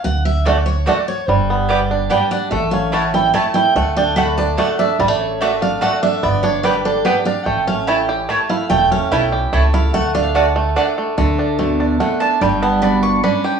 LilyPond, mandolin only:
\new Staff \with { instrumentName = "Mandolin" } { \time 3/4 \key d \major \tempo 4 = 146 r4 <a fis' d'' fis''>8 r8 <a fis' d'' fis''>8 r8 | r4 <b g' d'' g''>8 r8 <b g' d'' g''>8 r8 | r4 <a e' cis'' a''>8 r8 <a e' cis'' a''>8 r8 | r4 <a fis' d'' fis''>8 r8 <a fis' d'' fis''>8 r8 |
r4 <a fis' d'' fis''>8 r8 <a fis' d'' fis''>8 r8 | r4 <b g' d'' g''>8 r8 <b g' d'' g''>8 r8 | r4 <a e' cis'' a''>8 r8 <a e' cis'' a''>8 r8 | r4 <a e' cis'' a''>8 r8 <a e' cis'' a''>8 r8 |
r4 <a fis' d'' fis''>8 r8 <a fis' d'' fis''>8 r8 | r2 fis''8 a''8 | g''8 a''8 b''8 cis'''8 b''8 g''8 | }